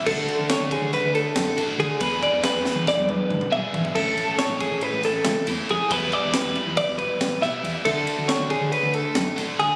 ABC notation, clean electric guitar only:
X:1
M:9/8
L:1/8
Q:3/8=92
K:Emix
V:1 name="Clean electric guitar"
A2 c G B A2 z G | B d B2 d B2 e2 | A2 c G B A2 z G | B d B2 d B2 e2 |
A2 c G B A2 z G |]